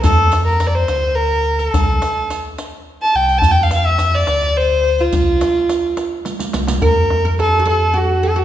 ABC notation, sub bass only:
X:1
M:6/8
L:1/8
Q:3/8=71
K:none
V:1 name="Sub bass" clef=bass
F,,3 D,,3 | C,, z4 C,, | F,,3 D,,3 | C,, z4 C,, |
F,, F,,4- F,, |]